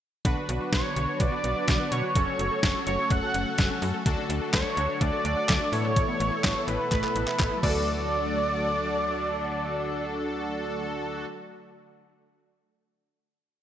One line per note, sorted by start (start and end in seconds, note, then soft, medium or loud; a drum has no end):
0.25 0.36 B1 loud
0.25 0.32 D3 medium
0.25 2.14 D3 medium
0.25 5.69 F#3 medium
0.25 2.14 B3 medium
0.25 2.12 D4 medium
0.25 2.12 F#4 medium
0.25 5.69 F#4 medium
0.25 2.12 B4 medium
0.25 kick loud
0.25 closed hi-hat medium
0.37 0.44 B3 medium
0.49 0.59 B1 loud
0.49 0.56 F#3 medium
0.49 closed hi-hat medium
0.61 0.68 F#4 medium
0.72 0.83 B1 loud
0.72 0.80 B3 medium
0.72 1.22 C#5 medium
0.72 kick loud
0.72 snare loud
0.72 closed hi-hat medium
0.96 1.07 B1 loud
0.96 1.04 D3 medium
0.96 closed hi-hat medium
1.08 1.16 B3 medium
1.20 1.31 B1 loud
1.20 1.28 F#3 medium
1.20 1.91 D5 loud
1.20 kick loud
1.20 closed hi-hat medium
1.32 1.40 F#4 medium
1.44 1.55 B1 loud
1.44 1.51 B3 medium
1.44 closed hi-hat medium
1.56 1.63 D5 medium
1.68 1.79 B1 loud
1.68 1.75 D3 medium
1.68 kick loud
1.68 snare loud
1.68 closed hi-hat medium
1.80 1.87 B3 medium
1.92 2.02 B2 loud
1.92 1.99 F#3 medium
1.92 2.83 C#5 loud
1.92 closed hi-hat medium
2.04 2.11 F#4 medium
2.15 2.26 F#1 loud
2.15 4.04 C#3 medium
2.15 2.23 F#3 medium
2.15 7.59 A3 medium
2.15 4.02 C#4 medium
2.15 4.02 F#4 medium
2.15 4.02 A4 medium
2.15 kick loud
2.15 closed hi-hat medium
2.27 2.35 C#4 medium
2.39 2.50 F#1 loud
2.39 2.47 A3 medium
2.39 closed hi-hat medium
2.51 2.59 A4 medium
2.63 2.74 F#1 medium
2.63 2.71 C#4 medium
2.63 kick loud
2.63 snare loud
2.63 closed hi-hat medium
2.87 2.98 F#1 loud
2.87 2.94 F#3 medium
2.87 3.12 C#5 loud
2.87 closed hi-hat medium
2.99 3.06 C#4 medium
3.10 3.21 F#1 loud
3.10 3.18 A3 medium
3.10 3.82 F#5 loud
3.10 kick loud
3.10 closed hi-hat medium
3.23 3.30 A4 medium
3.34 3.45 F#1 medium
3.34 3.42 C#4 medium
3.34 closed hi-hat medium
3.47 3.54 F#5 medium
3.58 3.69 F#1 loud
3.58 3.66 F#3 medium
3.58 kick loud
3.58 snare loud
3.58 closed hi-hat medium
3.70 3.78 C#4 medium
3.82 3.93 F#2 loud
3.82 3.90 A3 medium
3.82 open hi-hat medium
3.94 4.02 A4 loud
4.06 4.17 D2 loud
4.06 5.71 D3 medium
4.06 4.13 F#3 medium
4.06 5.69 D4 medium
4.06 5.69 F#4 medium
4.06 5.69 A4 medium
4.06 kick loud
4.06 closed hi-hat medium
4.18 4.25 D4 medium
4.30 4.40 D2 loud
4.30 4.37 A3 medium
4.30 closed hi-hat medium
4.42 4.49 A4 medium
4.53 4.64 D2 loud
4.53 4.61 D4 medium
4.53 5.03 C#5 loud
4.53 kick loud
4.53 snare loud
4.53 clap loud
4.53 closed hi-hat medium
4.77 4.88 D2 loud
4.77 4.85 F#3 medium
4.77 closed hi-hat medium
4.89 4.97 D4 medium
5.01 5.12 D2 loud
5.01 5.09 A3 medium
5.01 5.74 D5 loud
5.01 kick loud
5.01 closed hi-hat medium
5.13 5.21 A4 medium
5.25 5.36 D2 loud
5.25 5.32 D4 medium
5.25 closed hi-hat medium
5.37 5.44 F#5 medium
5.49 5.60 D2 loud
5.49 5.56 F#3 medium
5.49 kick loud
5.49 snare loud
5.49 clap medium
5.49 closed hi-hat medium
5.61 5.68 D4 medium
5.72 6.04 A2 medium
5.72 7.61 B2 medium
5.72 7.61 E3 medium
5.72 5.80 A3 medium
5.72 7.59 B3 medium
5.72 7.61 E4 medium
5.72 7.59 E4 medium
5.72 7.59 A4 medium
5.72 6.70 C#5 loud
5.72 open hi-hat medium
5.85 5.92 A4 loud
5.96 6.04 E3 medium
5.96 kick loud
5.96 closed hi-hat medium
6.08 6.16 B3 medium
6.20 6.31 A1 loud
6.20 6.28 A3 medium
6.20 closed hi-hat medium
6.32 6.40 A4 medium
6.44 6.55 A1 loud
6.44 6.51 B3 medium
6.44 kick loud
6.44 snare loud
6.44 clap loud
6.44 closed hi-hat medium
6.68 6.78 A1 loud
6.68 6.75 E3 medium
6.68 6.91 B4 loud
6.68 closed hi-hat medium
6.80 6.87 B3 medium
6.92 7.02 A1 loud
6.92 6.99 A3 medium
6.92 7.59 B4 medium
6.92 kick loud
6.92 clap medium
6.92 closed hi-hat medium
7.04 7.11 A4 medium
7.04 clap medium
7.15 7.26 A1 loud
7.15 7.23 B3 medium
7.15 closed hi-hat medium
7.27 7.35 E5 medium
7.27 clap medium
7.39 7.50 A1 loud
7.39 7.47 E3 medium
7.39 kick loud
7.39 clap medium
7.39 closed hi-hat medium
7.51 7.59 B3 medium
7.57 11.20 F#3 medium
7.57 11.24 A3 medium
7.63 11.26 D2 loud
7.63 11.26 D3 medium
7.63 11.26 F#3 medium
7.63 11.26 A3 medium
7.63 11.26 D4 medium
7.63 11.28 D4 medium
7.63 11.26 F#4 medium
7.63 11.26 A4 medium
7.63 11.26 D5 loud
7.63 kick loud
7.63 crash medium
7.69 11.32 A4 medium